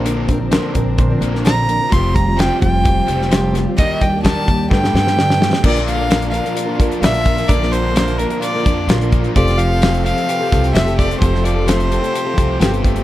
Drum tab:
CC |----------------|----------------|----------------|x---------------|
HH |x-x-x-x-x-x-x-x-|x-x-x-x-x-x-x-x-|x-x-x-x---------|-xx-xxxxx-xxxxxx|
SD |----o------oo---|----o------oo-o-|----o---oooooooo|-o--o-------o---|
BD |--o---o-o-------|o-o---o-o-------|o-o-o-o-o-------|o---------o---o-|

CC |----------------|----------------|----------------|
HH |x-x-xxxxx-x-xxxx|xxx-xxxxx-xxxxxx|x-x-xxxxx-x-xxxx|
SD |-o--o-------o---|-o--o-------o---|-o--o-------o---|
BD |o---------o---o-|o---------o---o-|o---------o---o-|